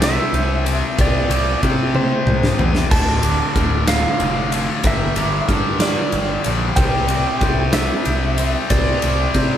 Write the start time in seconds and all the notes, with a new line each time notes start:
Already playing: C2 C4 G4 D5 G6
0.01 C3 G3 C4 E5, snare, ride
0.33 C2 G6, ride
0.65 C3 G3 C4, ride
0.97 C2 C3 G3 C4 F4 D5, kick, ride
1.29 C2 C3 G3 C4 D6, ride
1.63 C3 G3 C4 G6, kick, ride
1.94 C3 G3 C4 C5, high tom
2.26 C2 G6, mid tom
2.43 snare
2.58 E2 C3 G3 C4, floor tom
2.75 snare
2.89 D1 D2 A2 D3 A5, kick, crash
3.21 D2 A2 D3 D6, ride
3.55 D1 D2 A2 D3 F6, kick, ride
3.87 D2 A2 D3 F5, snare, ride
4.20 F1 F6, ride
4.52 D2 A2 D3, ride
4.83 G1 G2 D3 G3 A#4, kick, ride
4.87 E5
5.16 G1 G2 D3 G3 D6, ride
5.48 G2 D3 G3 F6, kick, ride
5.80 G2 D3 G3 D5, snare, ride
6.12 G1 F6, ride
6.44 A#1 G2 D3 G3, ride
6.76 C2 C3 G3 C4 G4 D5 G5, kick, ride
7.08 C3 G3 C4 D6, ride
7.41 C2 C3 G3 C4 G6, kick, ride
7.73 C3 G3 C4 E5, snare, ride
8.05 C2 G6, ride
8.38 C3 G3 C4, ride
8.69 C2 C3 G3 C4 D5, kick, ride
9.01 C2 C3 G3 C4 D6, ride
9.34 C3 G3 C4 G6, kick, ride